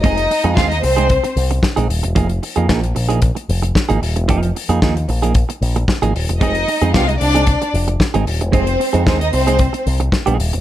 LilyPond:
<<
  \new Staff \with { instrumentName = "Violin section" } { \time 4/4 \key f \dorian \tempo 4 = 113 <ees' ees''>4 <f' f''>16 <ees' ees''>16 <c' c''>4 r4. | r1 | r1 | <ees' ees''>4 <f' f''>16 <ees' ees''>16 <d' d''>4 r4. |
<c' c''>4 <c' c''>16 <ees' ees''>16 <c' c''>4 r4. | }
  \new Staff \with { instrumentName = "Clean electric guitar" } { \time 4/4 \key f \dorian <aes c' ees' aes'>16 r8 <aes c' ees' aes'>16 <aes c' ees' aes'>16 r8 <aes c' ees' aes'>16 r4 r16 <aes c' ees' aes'>16 r8 | <f bes ees' aes'>16 r8 <f bes ees' aes'>16 <f bes ees' aes'>16 r8 <f bes ees' aes'>16 r4 r16 <f bes ees' aes'>16 r8 | <f bes ees' aes'>8 r16 <f bes ees' aes'>16 <f bes ees' aes'>16 r8 <f bes ees' aes'>16 r4 r16 <f bes ees' aes'>16 r8 | <aes c' ees' aes'>16 r8 <aes c' ees' aes'>16 <aes c' ees' aes'>8 r16 <aes c' ees' aes'>16 r4 r16 <aes c' ees' aes'>16 r8 |
<aes c' ees' aes'>16 r8 <aes c' ees' aes'>16 <aes c' ees' aes'>16 r8 <aes c' ees' aes'>16 r4 r16 <aes c' ees' aes'>8 r16 | }
  \new Staff \with { instrumentName = "Picked electric bass" } { \clef bass \time 4/4 \key f \dorian f,,8 r16 f,16 ees,8 c,8. r16 c,8 r16 bes,,16 ees,,16 e,,16 | f,,8 r16 f,16 bes,,8 bes,,8. r16 f,,8 r16 aes,,16 ees,,16 e,,16 | f,,8 r16 f,16 ees,8 bes,,8. r16 bes,,8 r16 aes,,16 ees,,16 e,,16 | f,,8 r16 f,16 c,8 c,8. r16 f,,8 r16 aes,,16 ees,,16 e,,16 |
f,,8 r16 f,16 ees,8 c,8. r16 c,8 r16 bes,,16 ees,,16 e,,16 | }
  \new DrumStaff \with { instrumentName = "Drums" } \drummode { \time 4/4 <hh bd>16 hh16 hho16 hh16 <bd sn>16 hh16 hho16 hh16 <hh bd>16 hh16 hho16 hh16 <bd sn>16 hh16 hho16 hh16 | <hh bd>16 hh16 hho16 hh16 <bd sn>16 hh16 hho16 hh16 <hh bd>16 hh16 hho16 hh16 <bd sn>16 hh16 hho16 hh16 | <hh bd>16 hh16 hho16 hh16 <bd sn>16 hh16 hho16 hh16 <hh bd>16 hh16 hho16 hh16 <bd sn>16 hh16 hho16 hh16 | <hh bd>16 hh16 hho16 hh16 <bd sn>16 hh16 hho16 hh16 <hh bd>16 hh16 hho16 hh16 <bd sn>16 hh16 hho16 hh16 |
<hh bd>16 hh16 hho16 hh16 <bd sn>16 hh16 hho16 hh16 <hh bd>16 hh16 hho16 hh16 <bd sn>16 hh16 hho16 hh16 | }
>>